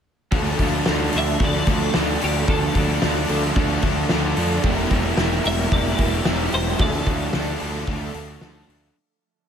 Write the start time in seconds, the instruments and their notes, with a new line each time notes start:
0.32 picked electric bass D2, overdriven electric guitar D3 F3 D4 F4 A4, distorted electric guitar D3 A3 D4, ambient pad A4 D5 F5 D6, kick, open hi-hat
0.59 picked electric bass D2, distorted electric guitar D3 A3 D4, overdriven electric guitar D4 F4 A4, kick, open hi-hat
0.85 picked electric bass D2, overdriven electric guitar D3 F3 D4 F4 A4, distorted electric guitar D3 A3 D4, snare, open hi-hat
1.12 picked electric bass D2, distorted electric guitar D3 A3 D4, overdriven electric guitar D4 F4 A4, open hi-hat
1.18 clean electric guitar E5
1.40 picked electric bass D2, overdriven electric guitar D3 D4 F4 A4, distorted electric guitar D3 A3 D4, kick, open hi-hat
1.44 clean electric guitar D5
1.66 picked electric bass D2, distorted electric guitar D3 A3 D4, overdriven electric guitar D4 F4 A4, kick, open hi-hat
1.94 picked electric bass D2, overdriven electric guitar D3 F3 D4 F4 A4, distorted electric guitar D3 A3 D4, snare, open hi-hat
2.21 picked electric bass D2, distorted electric guitar D3 A3 D4, overdriven electric guitar D4 F4 A4, clean electric guitar G4, open hi-hat
2.47 picked electric bass D2, overdriven electric guitar D3 F3 D4 F4 A4, distorted electric guitar D3 A3 D4, clean electric guitar A4, kick, open hi-hat
2.75 picked electric bass D2, distorted electric guitar D3 A3 D4, overdriven electric guitar F4 A4, kick, open hi-hat
2.79 overdriven electric guitar D4
3.02 picked electric bass D2, overdriven electric guitar D3 F3 D4 F4 A4, distorted electric guitar D3 A3 D4, snare, open hi-hat
3.28 picked electric bass D2, distorted electric guitar D3 A3, overdriven electric guitar D4 F4 A4, open hi-hat
3.32 distorted electric guitar D4
3.55 picked electric bass D2, overdriven electric guitar D3 D4 F4 A4, distorted electric guitar D3 A3 D4, kick, open hi-hat
3.82 picked electric bass D2, distorted electric guitar D3 A3 D4, overdriven electric guitar D4 F4 A4, kick, open hi-hat
4.09 picked electric bass D2, overdriven electric guitar D3 F3 D4 F4 A4, distorted electric guitar D3 A3 D4, snare, open hi-hat
4.36 picked electric bass F2, distorted electric guitar D3 A3 D4, overdriven electric guitar D4 F4 A4, open hi-hat
4.63 picked electric bass E1, overdriven electric guitar E2 E3 G3 A#3 E4 G4, distorted electric guitar E2 B2 E3, ambient pad A#4 E5 G5 E6, kick, open hi-hat
4.68 overdriven electric guitar A#4
4.90 picked electric bass E1, distorted electric guitar E2 B2 E3, overdriven electric guitar G3 E4 G4 A#4, kick, open hi-hat
4.95 overdriven electric guitar A#3
5.17 picked electric bass E1, distorted electric guitar E2 B2 E3, overdriven electric guitar G3 A#3 E4 G4 A#4, snare, open hi-hat
5.44 picked electric bass E1, distorted electric guitar E2 B2 E3, overdriven electric guitar G3 A#3 E4 G4 A#4, clean electric guitar E5, open hi-hat
5.71 picked electric bass E1, overdriven electric guitar E2 E3 G3 A#3 E4 A#4, distorted electric guitar E2 B2 E3, clean electric guitar D5, kick, open hi-hat
5.98 picked electric bass E1, distorted electric guitar E2 B2 E3, overdriven electric guitar G3 A#3 E4 A#4, kick, open hi-hat
6.25 picked electric bass E1, distorted electric guitar E2 B2 E3, overdriven electric guitar G3 A#3 E4 G4 A#4, snare, open hi-hat
6.52 picked electric bass E1, distorted electric guitar E2 B2 E3, overdriven electric guitar G3 E4 G4 A#4, clean electric guitar C5, open hi-hat
6.56 overdriven electric guitar A#3
6.79 picked electric bass D2, distorted electric guitar D3 A3 D4, overdriven electric guitar D3 F3 D4 F4, ambient pad A4 F5 D6, clean electric guitar D5, kick, open hi-hat
6.83 overdriven electric guitar A4
7.06 picked electric bass D2, distorted electric guitar D3 A3 D4, overdriven electric guitar F4 A4, kick, open hi-hat
7.11 overdriven electric guitar D4
7.33 picked electric bass D2, distorted electric guitar D3 A3 D4, overdriven electric guitar D3 F3 D4 F4, snare, open hi-hat
7.38 overdriven electric guitar A4
7.60 picked electric bass D2, distorted electric guitar D3 A3 D4, overdriven electric guitar F4 A4, open hi-hat
7.64 overdriven electric guitar D4
7.87 picked electric bass D2, overdriven electric guitar D3 D4 F4, distorted electric guitar D3 A3 D4, kick, open hi-hat
7.91 overdriven electric guitar A4
8.14 picked electric bass D2, distorted electric guitar D3 A3 D4, overdriven electric guitar F4 A4, open hi-hat
8.18 overdriven electric guitar D4
8.41 picked electric bass D2, overdriven electric guitar D3 F3 D4 F4 A4, distorted electric guitar D3 A3 D4, snare, open hi-hat
8.68 picked electric bass D2, distorted electric guitar D3 A3 D4, overdriven electric guitar D4 F4 A4, open hi-hat